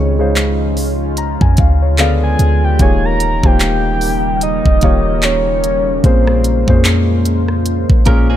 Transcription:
Already playing: 808-style bass C#2, grand piano C#3 G#3 D#4 F4 C#5, ambient pad C#3 G#3 C#4 F4, soft synth lead C#5
0.19 grand piano C#3 G#3 D#4 F4 C5
0.36 clap, closed hi-hat
0.77 open hi-hat
1.17 grand piano A#5, closed hi-hat
1.41 808-style bass F2, grand piano G#5, kick
1.57 808-style bass D2, grand piano F5, kick, closed hi-hat
1.82 grand piano C#5
1.98 grand piano D3 B3 F4 G#4 D5, ambient pad D3 B3 F4, soft synth lead F5, clap, closed hi-hat
2.24 soft synth lead G#5
2.39 808-style bass D2, closed hi-hat
2.64 soft synth lead G5
2.79 808-style bass D#1, ambient pad C#3 G3 A#3 D#4 A#4, grand piano D#3 A#3 F4 G4 C#5, soft synth lead G#5, kick, closed hi-hat
3.05 soft synth lead A#5
3.20 closed hi-hat
3.44 808-style bass D#1, grand piano D#3 A#3 F4 G4 C5, soft synth lead G5, kick
3.60 clap, closed hi-hat
4.01 open hi-hat
4.41 soft synth lead D#5, closed hi-hat
4.66 808-style bass D#1, kick
4.81 grand piano D#3 A#3 F4 G4 C#5, kick, closed hi-hat
5.23 soft synth lead C#5, clap, closed hi-hat
5.64 closed hi-hat
6.04 808-style bass A#1, grand piano A#2 A#3 C#4 G#4 C5, ambient pad G#3 F4 C5, soft synth lead C5, kick, closed hi-hat
6.27 cross-stick
6.44 closed hi-hat
6.68 808-style bass F2, grand piano A#2 A#3 C#4 G#4 C5, kick
6.85 clap, closed hi-hat
7.25 closed hi-hat
7.48 cross-stick
7.66 closed hi-hat
7.89 808-style bass A#1, kick
8.06 grand piano A#2 A#3 C#4 G#4 A#4, clean electric guitar C#4 A#4, kick, closed hi-hat
8.30 clean electric guitar C4 G#4

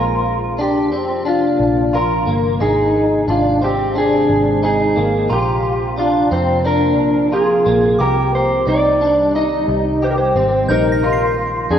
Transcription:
Already playing: picked electric bass A#1, ambient pad C3 F3 A#3 D4 F4, clean electric guitar F4 A#4
0.58 clean electric guitar D4 G4
0.92 picked electric bass F2, clean electric guitar C4
1.25 clean electric guitar D4 F4
1.60 picked electric bass A#1
1.93 clean electric guitar F4 A#4
2.27 picked electric bass G1, clean electric guitar A#3
2.60 picked electric bass G#1, ambient pad D#3 G#3 C4 C5, clean electric guitar D#4 G#4
3.28 picked electric bass G#1, clean electric guitar D4 F4
3.61 clean electric guitar C4 G4
3.95 clean electric guitar D4 G#4
4.30 picked electric bass G#1
4.63 clean electric guitar D#4 G#4
4.96 picked electric bass G#1, clean electric guitar A#3
5.29 picked electric bass A#1, ambient pad F3 A#3 C4 F4, clean electric guitar F4, synth bell A#5
5.33 clean electric guitar G4
5.98 clean electric guitar D4 F4
6.31 picked electric bass F2, clean electric guitar C4 C5
6.65 clean electric guitar D4 A#4
7.00 picked electric bass A#1
7.32 clean electric guitar F4 G#4
7.66 picked electric bass A#1, clean electric guitar A#3
7.99 picked electric bass C2, ambient pad D#3 G3 G4, clean electric guitar G4 A#4, synth bell D6
8.35 clean electric guitar C5
8.67 picked electric bass C2, clean electric guitar D#4 D5
9.01 clean electric guitar D4
9.35 clean electric guitar D#4 D#5
9.68 picked electric bass C2
10.02 clean electric guitar G4 C5
10.11 clean electric guitar A#4
10.18 clean electric guitar C5
10.36 picked electric bass G#1, clean electric guitar C4
10.68 picked electric bass A#1, ambient pad D#3 F3 G#3 A#3 F4, clean electric guitar D#4 A#4, synth bell G6
10.92 synth bell A#6
11.03 clean electric guitar F4
11.13 synth bell C7
11.71 picked electric bass F2, clean electric guitar D4 G#4

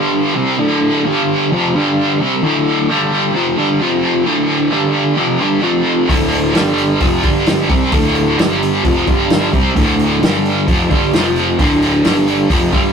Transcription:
Already playing: overdriven electric guitar G2 D3 G3
0.35 overdriven electric guitar C3 G3 C4
0.58 overdriven electric guitar D2 A2 D3
1.05 overdriven electric guitar G2 D3 G3
1.52 overdriven electric guitar F2 C3 F3
1.74 overdriven electric guitar G2 D3 G3
2.19 overdriven electric guitar C3 G3 C4
2.43 overdriven electric guitar D2 A2 D3
2.88 overdriven electric guitar G2 D3 G3
3.34 overdriven electric guitar F2 C3 F3
3.57 overdriven electric guitar G2 D3 G3
3.80 overdriven electric guitar F2 C3 F3
4.26 overdriven electric guitar D2 A2 D3
4.71 overdriven electric guitar G2 D3 G3
5.17 overdriven electric guitar F2 C3 F3
5.40 overdriven electric guitar G2 D3 G3
5.62 overdriven electric guitar F2 C3 F3
6.09 picked electric bass D1, overdriven electric guitar D2 A2 D3, kick, open hi-hat
6.32 open hi-hat
6.54 picked electric bass G1, overdriven electric guitar G2 D3 G3, snare, open hi-hat
6.78 open hi-hat
7.00 picked electric bass F1, overdriven electric guitar F2 C3 F3, kick, open hi-hat
7.23 picked electric bass G1, overdriven electric guitar G2 D3 G3, kick, open hi-hat
7.46 snare, open hi-hat
7.69 picked electric bass C2, overdriven electric guitar C3 G3 C4, kick, open hi-hat
7.92 picked electric bass D1, overdriven electric guitar D2 A2 D3, kick, open hi-hat
8.15 open hi-hat
8.38 picked electric bass G1, overdriven electric guitar G2 D3 G3, snare, open hi-hat
8.62 open hi-hat
8.84 picked electric bass F1, overdriven electric guitar F2 C3 F3, kick, open hi-hat
9.07 picked electric bass G1, overdriven electric guitar G2 D3 G3, kick, open hi-hat
9.30 snare, open hi-hat
9.52 picked electric bass C2, overdriven electric guitar C3 G3 C4, kick, open hi-hat
9.75 picked electric bass D1, overdriven electric guitar D2 A2 D3, kick, open hi-hat
9.99 open hi-hat
10.21 picked electric bass G1, overdriven electric guitar G2 D3 G3, snare, open hi-hat
10.45 open hi-hat
10.67 picked electric bass F1, overdriven electric guitar F2 C3 F3, kick, open hi-hat
10.90 picked electric bass G1, overdriven electric guitar G2 D3 G3, kick, open hi-hat
11.13 picked electric bass F1, overdriven electric guitar F2 C3 F3, snare, open hi-hat
11.36 open hi-hat
11.59 picked electric bass D1, overdriven electric guitar D2 A2 D3, kick, open hi-hat
11.82 open hi-hat
12.04 picked electric bass G1, overdriven electric guitar G2 D3 G3, snare, open hi-hat
12.27 open hi-hat
12.50 picked electric bass F1, overdriven electric guitar F2 C3 F3, kick, open hi-hat
12.72 picked electric bass G1, overdriven electric guitar G2 D3 G3, kick, open hi-hat

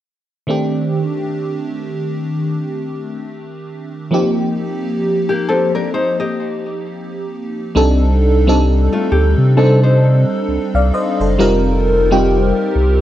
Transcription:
0.47 fm electric piano D#3 A3 C4 D4 G4
4.11 fm electric piano F3 A#3 C4 D#4 G4
5.29 nylon-string guitar A#3 G4
5.48 nylon-string guitar C4 A4
5.75 nylon-string guitar D4 A#4
5.94 nylon-string guitar D#4 C5
6.20 nylon-string guitar G4 D#5
7.75 sub bass C2, fm electric piano G3 C4 D4 D#4 A4
8.47 fm electric piano G3 C4 D4 D#4 A4
8.93 nylon-string guitar A3 F4
9.12 sub bass D2, nylon-string guitar G4
9.38 sub bass C3
9.57 fm electric piano G3 C4 D4 D#4 A4, nylon-string guitar C4 A4
9.83 nylon-string guitar D#4 C5
10.48 sub bass C2
10.74 sub bass C2, fm electric piano D5 F5
10.94 fm electric piano C5 D#5
11.20 sub bass F#1, fm electric piano A4 C5
11.38 sub bass F1, fm electric piano G3 C4 D#4 F4 A#4
12.11 fm electric piano G3 C4 D#4 F4 G4
12.75 sub bass C2

